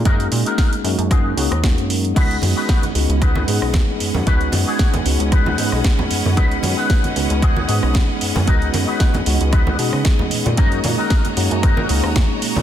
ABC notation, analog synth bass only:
X:1
M:4/4
L:1/16
Q:"Swing 16ths" 1/4=114
K:Gb
V:1 name="Analog synth bass" clef=bass
G,,2 B,, z3 G,, G,,3 D,, E,,2 G,,3 | D,,2 G,, z3 D,, D,,3 A,, C,, z2 G,, G,, | D,,2 G,, z3 D,, D,,3 A,, C,, z2 G,, G,, | D,,2 G,, z3 D,, D,,3 A,, C,, z2 G,, G,, |
D,,2 G,, z3 D,, D,,3 C, D, z2 B,, B,, | G,,2 B,, z3 G,, G,,3 D,, E,, z2 B,, B,, |]